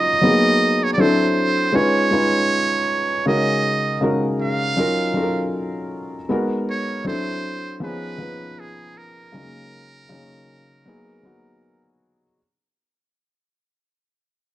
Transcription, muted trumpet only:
Already playing: D#5
0.83 C#5
0.93 D5
1.00 C5
1.76 C#5
3.27 D#5
4.42 F5
6.70 C#5
7.08 C5
7.84 B4
8.60 G#4
8.97 A#4

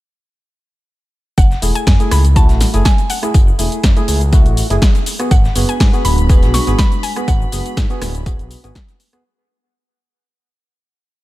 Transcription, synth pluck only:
1.38 F#5
1.75 G#5
2.12 B5
2.36 A5
2.85 G#5
3.10 F#5
5.31 F#5
5.69 G#5
6.05 B5
6.54 C#6
6.78 B5
7.03 G#5
7.28 F#5

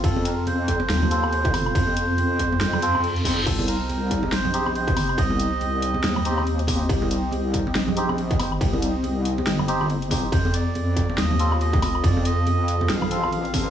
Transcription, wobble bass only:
0.04 F2
0.89 D#2
1.75 F2
2.61 F2
3.46 C2
4.32 A#1
5.18 C2
6.04 D#2
6.89 C2
7.75 A#1
8.34 A1
8.61 C2
9.47 G1
10.32 F2
11.18 D#2
11.78 D2
12.04 F2
12.89 A1

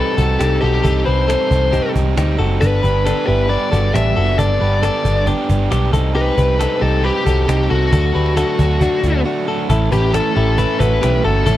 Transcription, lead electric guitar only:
Already playing: A4
0.61 G4
1.05 C5
2.61 B4
3.27 B4
3.49 D5
3.94 E5
4.39 D5
4.84 D5
6.16 B4
6.82 A4
7.04 G4
7.70 F#4
9.93 G4
10.14 A4
10.59 A4
10.80 B4
11.25 A4

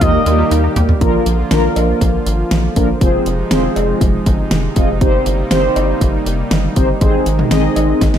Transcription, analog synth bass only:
0.01 D#2
0.26 D#2
0.51 D#2
0.76 D#2
1.01 A#1
1.26 A#1
1.51 A#1
1.76 A#1
2.01 A#1
2.26 G#1
2.51 A#1
2.76 A#1
3.01 F1
3.26 F1
3.51 F1
3.76 F1
4.01 F1
4.26 G1
4.51 F1
4.76 F1
5.01 G1
5.26 G1
5.51 G1
5.76 G1
6.01 G1
6.26 F1
6.51 G1
6.77 G1
7.01 G#1
7.26 G#1
7.51 G#1
7.76 G#1
8.01 G#1

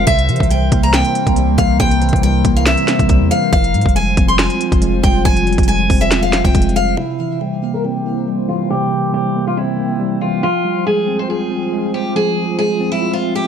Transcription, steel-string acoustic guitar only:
0.07 E5
0.51 G5
0.83 A#5
0.94 G5
1.58 F5
1.80 G5
2.23 G5
2.56 F5
2.66 E5
3.31 F5
3.53 F5
3.96 G#5
4.28 C6
4.39 G#5
5.03 G5
5.25 G#5
5.68 G#5
6.01 E5
6.23 F5
6.45 G5
6.76 F5
6.97 E4
7.41 G4
7.74 A#4
7.85 G4
8.48 F4
8.70 G4
9.14 G4
9.47 F4
9.57 E4
10.21 F4
10.43 F4
10.87 G#4
11.19 C5
11.30 G#4
11.94 G4
12.16 G#4
12.59 G#4
12.92 E4
13.13 F4
13.35 G4

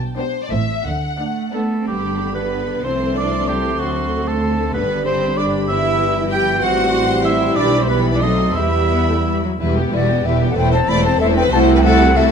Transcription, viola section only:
0.18 B3 D4
0.52 C4 E4
1.20 A3 D4
1.54 A3 D4
1.88 D3 G4
2.84 E3 A4
3.80 D3
4.74 G4
5.69 E3
6.62 G4
7.57 E3 G4
7.89 E3 G4
8.22 F#3 A4
8.56 G3 G4
8.91 B3
9.08 A3
9.26 G3
9.43 F#3
9.60 G3 E4
9.77 B3 G4
9.93 G3 E4
10.09 B3 G4
10.25 G3 E4
10.42 B3 G4
10.57 A3 E4
10.73 C4
10.89 A3 E4
11.06 C4
11.21 A3 E4
11.36 C4
11.52 A3 E4
11.84 A3 E4
12.17 A3 E4

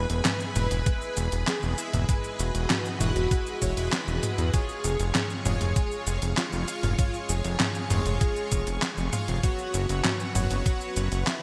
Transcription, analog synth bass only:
0.10 E1
0.56 E1
0.71 E1
1.17 E1
1.32 E1
1.63 E1
1.94 E1
2.39 E1
2.55 E1
3.00 E1
3.16 E1
3.62 E1
3.77 E1
4.08 E1
4.38 E2
4.84 F1
5.00 F1
5.46 F1
5.61 F1
6.07 F1
6.22 F1
6.53 F1
6.83 F1
7.29 F1
7.45 F1
7.90 F1
8.06 F1
8.52 F1
8.67 F1
8.97 F1
9.28 F1
9.74 F#1
9.89 F#1
10.35 F#1
10.51 F#1
10.96 F#1
11.12 F#1

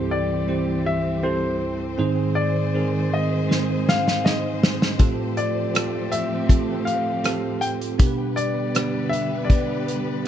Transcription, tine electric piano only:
Already playing: C2 G2 C4 E4 G4 A4 C5
0.48 C4 E4 G4 C5
1.23 C4 E4 G4 A4
1.98 G#2 D#3 C4 D#4 G#4 C5
2.74 C4 D#4 G#4 A#4
3.49 C4 D#4 G#4 C5
4.24 C4 D#4 G#4 D#5
4.99 A2 A3 C4 F4 G4 A4
5.74 C4 F4 G4 A4
6.48 C4 F4 G4 A4
7.24 C4 F4 G4 A4
7.98 B2 B3 D4 G4 A#4
8.07 B4
8.74 B3 D4 G4 D5
9.50 B3 D4 G4 B4

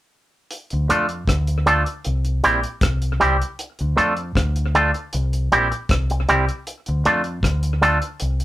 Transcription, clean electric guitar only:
0.89 A3 D4 F4 A4
1.66 A3 D4 F4 A4
2.44 G3 C4 E4 G4
3.20 G3 C4 E4 G4
3.97 A3 D4 F4 A4
4.75 A3 D4 F4 A4
5.52 G3 C4 E4 G4
5.71 muted clean electric guitar stroke
6.11 muted clean electric guitar stroke
6.29 G3 C4 E4 G4
7.06 A3 D4 F4 A4
7.82 A3 D4 F4 A4

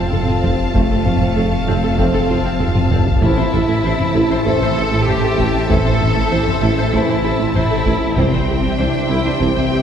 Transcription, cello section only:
Already playing: C4
0.74 A3
1.98 C4
3.23 E4
4.47 A4
5.08 G4
5.70 A4
6.94 E4
7.56 E4
8.17 C4
8.79 D4
9.10 E4
9.26 D4
9.41 C4

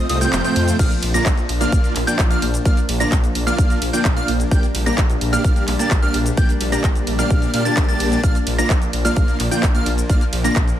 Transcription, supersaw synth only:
0.10 A3 C4 F4 C5 D#5
0.21 A3 C4 F4 C5 G5
0.44 A3 C4 F4 C5 G5
0.79 A#3 D4 F4 D5 F5
1.14 A#3 D4 F4 D5 A#5
1.61 A#3 D4 F4 D5 F5
2.07 A#3 D4 F4 D5 G5
2.31 A#3 D4 F4 D5 F5
2.65 A#3 D4 F4 D5 F5
3.00 A#3 D4 F4 D5 A#5
3.47 A#3 D4 F4 D5 F5
3.93 A#3 D4 F4 D5 G5
4.17 A#3 D4 F4 D5 F5
4.51 A#3 D4 G4 D5 G5
4.86 A#3 D4 G4 D5 A#5
5.33 A#3 D4 G4 D5 F5
5.79 A#3 D4 G4 D5 A5
6.03 A#3 D4 G4 D5 F5
6.37 A#3 D4 G4 D5 G5
6.72 A#3 D4 G4 D5 A#5
7.19 A#3 D4 G4 D5 F5
7.54 A#3 D4 G4 D5 F5
7.65 A#3 D4 G4 D5 A5
7.89 A#3 D4 G4 D5 A5
8.24 A#3 D4 F4 D5 F5
8.58 A#3 D4 F4 D5 A#5
9.05 A#3 D4 F4 D5 F5
9.51 A#3 D4 F4 D5 G5
9.75 A#3 D4 F4 D5 F5
10.10 A#3 D4 F4 D5 F5
10.44 A#3 D4 F4 D5 A#5

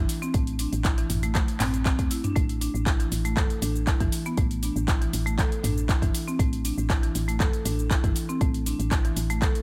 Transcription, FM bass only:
0.34 A1
0.72 A1
1.10 A1
1.60 A1
1.99 E2
2.36 A1
2.74 A1
3.11 A1
3.62 A1
4.00 G1
4.37 A1
4.76 A1
5.13 A1
5.63 A1
6.02 G1
6.39 A1
6.78 A1
7.15 A1
7.65 A1
8.04 G1
8.41 A1
8.79 A1
9.16 A1

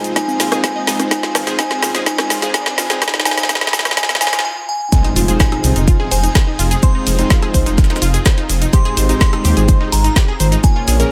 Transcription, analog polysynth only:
Already playing: G#3 C4 D#4 F4 C5
0.16 D#4 F4 C5
0.52 G#3 C4 D#4 F4 C5
1.11 G#3 C4 D#4 F4 C5
1.47 G#3 C4 D#4 F4 C5
1.95 G#3 C4 D#4 F4 C5
2.07 G#3 C4 D#4 F4
2.42 G#3 C4 D#4 F4 C5
2.54 G#3 C4 D#4
2.90 G#3 C4 D#4 F4 C5
3.26 G#3 C4 D#4 F4 C5
3.49 G#3
3.73 G#3 F4 C5
3.97 G#3 C4 D#4 F4 C5
4.21 G#3 C4 D#4 F4 C5
4.92 G#3 C4 D#4 F4 C5
5.28 G#3 C4 D#4 F4 C5
6.83 G#3 C4 D#4 F4 C5
7.19 G#3 C4 D#4 F4 C5
8.73 G#2 G#3 C4 D#4 G4 C5
9.09 G#2 G#3 C4 D#4 G4 C5
10.64 A#2 A#3 C#4 F4 G#4 C#5
11.00 A#2 A#3 C#4 F4 G#4 C#5

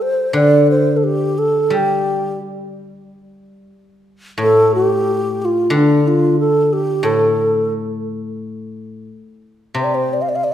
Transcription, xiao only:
0.02 C5
0.35 D5
0.70 C5
0.96 A4
1.04 G4
1.38 A4
1.73 G4 A4
4.42 A4
4.74 G4
5.42 F4 G4
5.74 D4 F4
6.07 F4
6.40 A4
6.73 G4
7.05 A4
9.81 C5 D5
9.94 C5
10.13 D5
10.22 F5
10.29 D5
10.35 F5
10.44 D5

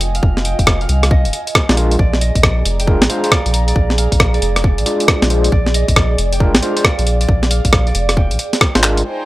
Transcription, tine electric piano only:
1.69 G#3 D#4 F4 D5
1.77 G#3 D4 F4 A#4
2.87 G#3 D4 F4 A#4
3.10 G#3 D4 F4 C5
3.24 G#3 D4 F4 C5
4.86 G#3 D4 F4 D5
5.30 G#3 D4 F4 C5
6.40 G#3 D4 F4 A#4
6.62 G#3 D4 F4 C5
6.76 G#3 D4 F4 C5
8.75 G#3 D4 F4 C5
8.83 G#3 D4 F4 A#4

